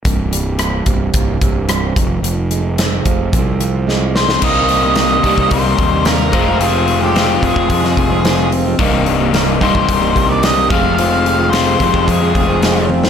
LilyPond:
<<
  \new Staff \with { instrumentName = "Lead electric guitar" } { \time 4/4 \key c \minor \tempo 4 = 110 r1 | r2. r8 c''8 | ees''4 ees''4 c''4 bes'4 | aes'8. g'8. aes'2 r8 |
r4. c''16 c''4 d''16 ees''8 f''8 | f''4 c''4 aes'4. r8 | }
  \new Staff \with { instrumentName = "Steel-string acoustic guitar" } { \clef bass \time 4/4 \key c \minor c,8 g8 bes8 c8 bes8 c8 g8 f,8 | f,8 aes8 c'8 f8 c'8 f8 aes8 c'8 | <c, g, c g bes ees'>8 <c g bes ees'>16 <c g bes ees'>16 <c, g, c g bes ees'>8 <c g bes ees'>8. <c g bes ees'>16 <c g bes ees'>16 <c g bes ees'>16 <c, g, c g bes ees'>8 <f, c f aes c' f'>16 <f aes c' f'>16 | <f, c f aes c' f'>8 <f aes c' f'>16 <f aes c' f'>16 <f, c f aes c' f'>8 <f aes c' f'>8. <f aes c' f'>16 <f aes c' f'>16 <f aes c' f'>16 <f, c f aes c' f'>8 <f aes c' f'>16 <f aes c' f'>16 |
<c, g, c g bes ees'>8 <c g bes ees'>16 <c g bes ees'>16 <c, g, c g bes ees'>8 <c g bes ees'>8. <c g bes ees'>16 <c g bes ees'>16 <c g bes ees'>16 <c, g, c g bes ees'>8 <f, c f aes c' f'>16 <f aes c' f'>16 | <f, c f aes c' f'>8 <f aes c' f'>16 <f aes c' f'>16 <f, c f aes c' f'>8 <f aes c' f'>8. <f aes c' f'>16 <f aes c' f'>16 <f aes c' f'>16 <f, c f aes c' f'>8 <f aes c' f'>16 <f aes c' f'>16 | }
  \new Staff \with { instrumentName = "Overdriven electric guitar" } { \clef bass \time 4/4 \key c \minor r1 | r1 | <c, g, c g bes ees'>4. <c, g, c g bes ees'>2 <f, c f aes c' f'>8~ | <f, c f aes c' f'>4 <f, c f aes c' f'>2~ <f, c f aes c' f'>8 r8 |
<c, g, c g bes ees'>4. <c, g, c g bes ees'>2 <f, c f aes c' f'>8~ | <f, c f aes c' f'>4 <f, c f aes c' f'>2~ <f, c f aes c' f'>8 r8 | }
  \new Staff \with { instrumentName = "Fingered electric bass" } { \clef bass \time 4/4 \key c \minor c,,4. c,,8 c,,8 c,,4 f,,8 | f,,4. f,,8 c,2 | c,4. c,16 c,16 c,8 ees,4 f,,8~ | f,,4. f,,16 f,,16 f,8 f,,4. |
c,,4. c,,16 c,,16 c,,8 c,4 f,,8~ | f,,4. f,,16 f,,16 f,8 f,,4. | }
  \new DrumStaff \with { instrumentName = "Drums" } \drummode { \time 4/4 <hh bd>8 hh8 <hh ss>8 <hh bd>8 <hh bd>8 <hh bd>8 <hh ss>8 <hh bd>8 | hh8 hh8 <hh sn>8 <hh bd>8 <hh bd>8 hh8 sn8 sn16 sn16 | <cymc bd>8 hho8 <hho sn>8 <hho bd>16 bd16 <hho bd>8 <hho bd>8 <hho sn>8 <hho bd>8 | hho8 hho8 <hho sn>8 <hho bd>16 bd16 <hho bd>16 sn16 <hho bd>8 <hho sn>8 hho8 |
<hho bd>8 hho8 <hho sn>8 <hho bd>16 bd16 <hho bd>8 <hho bd>8 <hho sn>8 <hho bd>8 | hho8 hho8 <hho sn>8 <hho bd>16 bd16 <hho bd>8 <hho bd>8 <hho sn>8 tommh16 sn16 | }
>>